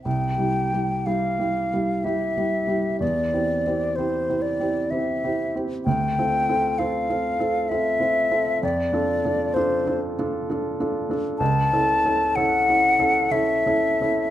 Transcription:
X:1
M:3/4
L:1/8
Q:1/4=64
K:C
V:1 name="Flute"
g2 f2 e2 | d2 c d e z | g2 f2 e2 | d2 c z3 |
[K:Alyd] a2 f2 e2 |]
V:2 name="Grand piano"
(3C,, [G,EG] [G,EG] (3[G,EG] [G,EG] [G,EG] (3[G,EG] [G,EG] [G,EG] | (3E,, [CEG] [CEG] (3[CEG] [CEG] [CEG] (3[CEG] [CEG] [CEG] | (3D,, [CFA] [CFA] (3[CFA] [CFA] [CFA] (3[CFA] [CFA] [CFA] | (3F,, [DFA] [DFA] (3[DFA] [DFA] [DFA] (3[DFA] [DFA] [DFA] |
[K:Alyd] (3C,, [CEA] [CEA] (3[CEA] [CEA] [CEA] (3[CEA] [CEA] [CEA] |]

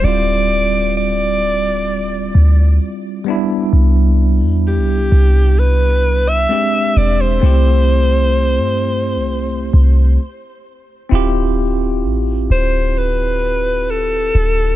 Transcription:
X:1
M:4/4
L:1/16
Q:1/4=65
K:Ddor
V:1 name="Alto saxophone"
d4 d8 z4 | z4 G4 B3 e3 d ^B- | ^B12 z4 | z6 c2 B4 A4 |]
V:2 name="Tine electric piano"
[G,CEF]12- [G,CEF]2 [G,B,DE]2- | [G,B,DE]12 [^G,^B,D=G]4 | [A,CEG]12 z4 | [CEFG]16 |]
V:3 name="808-style bass" clef=bass
D,,,8- D,,,2 D,,2 z4 | C,,3 E,,3/2 C,,3/2 C,,6 z2 E,,,2 | C,,4- C,, G,,2- G,,/2 C,,2- C,,/2 C,,2 z4 | D,,,4 A,,,2 D,,,8 D,,,2 |]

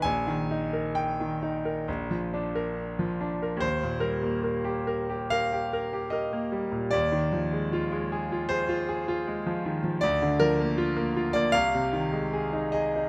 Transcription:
X:1
M:4/4
L:1/16
Q:1/4=75
K:Eb
V:1 name="Grand piano"
a4 g8 z4 | c2 B6 f4 e4 | d8 c8 | d2 B4- B d f6 e2 |]
V:2 name="Grand piano"
B,,, E, E B2 E, E B B,,, F, D B2 F, D B | E,, B,, G, B, B G B G B G B G B B, G, B,, | E,, E, F, A, F A, A F A F A F A, F, E, F, | D,, D, F, B, F B, F B, C,, C, E, A, A E A E |]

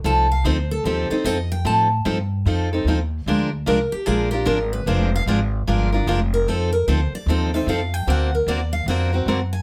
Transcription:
X:1
M:4/4
L:1/8
Q:"Swing" 1/4=149
K:Fmix
V:1 name="Steel-string acoustic guitar"
a f c A G c e g | a z6 z | z2 B G _A G B =B | c f z4 z B |
A B c d e =e f g | ^f ^A d ^e f3 _a |]
V:2 name="Steel-string acoustic guitar"
[F,CEA] z [F,CEA] z [F,CEA] [CEA] [F,CEA] z | [F,CEA] z [F,CEA] z [F,CEA] [CEA] [F,CEA] z | [F,_A,DFB] z [F,A,DFB] z [F,A,DFB] [DFB] [F,A,DFB] z | [F,_A,DFB] z [F,A,DFB] z [F,A,DFB] [DFB] [F,A,DFB] z |
[F,CEA] z [F,CEA] z [F,CEA] [CEA] [F,CEA] z | [D,^A,C^F^A] z [D,A,CFA] z [D,A,CFA] [CFA] [D,A,CFA] z |]
V:3 name="Upright bass" clef=bass
C,,2 D,,2 E,, z F,,2 | A,,2 G,,2 F,,2 E,,2 | D,,2 C,, z B,,,2 _A,,,2 | F,,,2 _A,,,2 G,,,2 F,,,2 |
F,,2 D,, z E,,2 F,,2 | D,,2 E,,2 ^E,,2 ^F,,2 |]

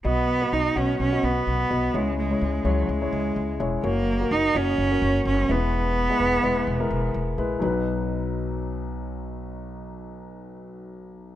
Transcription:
X:1
M:4/4
L:1/16
Q:"Swing 16ths" 1/4=127
K:B
V:1 name="Grand piano"
[B,Fd]2 z [B,Fd]2 z [B,Ff]2 z [B,Fd]4 z [B,Fd] z | [G,Ec]2 z [G,Ec]2 z [G,Ec]2 z [G,Ec]4 z [G,Ec] z | [A,Fc]2 z [A,FA]2 z [A,Fc]2 z [A,Fc]4 z [G,EB]2- | [G,EB]2 z [G,EB]2 z [G,EB]2 z [G,EA]4 z [G,EB] z |
[F,DB]16- | [F,DB]16 |]
V:2 name="Grand piano" clef=bass
B,,6 z8 z2 | C,6 z8 z2 | z12 z2 E,2- | E,4 z12 |
B,,,16- | B,,,16 |]
V:3 name="Cello"
B,4 D2 C2 C2 B,6 | G,2 G,4 F,2 G,6 z2 | A,4 D2 C6 C2 B,2- | B,12 z4 |
z16 | z16 |]
V:4 name="Upright bass" clef=bass
B,,,4 B,,,2 B,,,2 B,,,2 B,,,2 B,,,2 B,,,2 | C,,4 C,,2 C,,2 C,,2 C,,2 C,,2 E,,,2 | F,,,4 F,,,2 F,,,2 F,,,2 F,,,2 F,,,2 E,,,2- | E,,,4 E,,,2 E,,,2 E,,,2 E,,,2 E,,,2 A,,,2 |
B,,,16- | B,,,16 |]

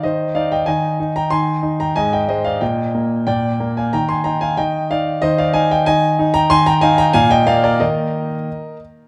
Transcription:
X:1
M:2/4
L:1/16
Q:1/4=92
K:Eb
V:1 name="Grand piano"
[ce]2 [df] [eg] [ea]3 [gb] | [ac']3 [gb] [ea] [eg] [ce] [df] | [eg]4 [dg]3 [fa] | [gb] [ac'] [gb] [fa] [eg]2 [df]2 |
[ce] [df] [fa] [eg] [ea]3 [gb] | [ac'] [gb] [fa] [gb] [fa] [eg] [df] [Bd] | [Be]6 z2 |]
V:2 name="Grand piano" clef=bass
E,2 E2 E,2 E2 | E,2 E2 A,,2 A,2 | B,,2 B,2 B,,2 B,2 | E,2 E2 E,2 E2 |
E,2 E2 E,2 E2 | E,2 E2 B,,2 B,2 | [E,B,E]4 z4 |]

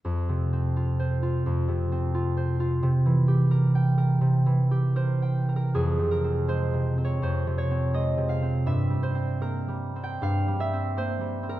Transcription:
X:1
M:4/4
L:1/16
Q:1/4=83
K:Fm
V:1 name="Harp"
z16 | z12 c3 B | A2 B2 c3 d c2 d2 e2 f2 | =e2 c2 B3 g f2 e2 c3 B |]
V:2 name="Harp"
(3F,,2 C,2 C2 (3F2 c2 F2 (3F,,2 C,2 C2 (3F2 c2 F2 | (3C,2 =E,2 G2 (3B2 g2 B2 (3C,2 E,2 G2 (3B2 g2 B2 | (3F,,2 C,2 C2 (3A,2 C,2 C2 (3F,,2 C,2 C2 (3A,2 C,2 C2 | (3G,,2 G,2 C2 (3B,2 G,2 C2 (3G,,2 G,2 C2 (3B,2 G,2 C2 |]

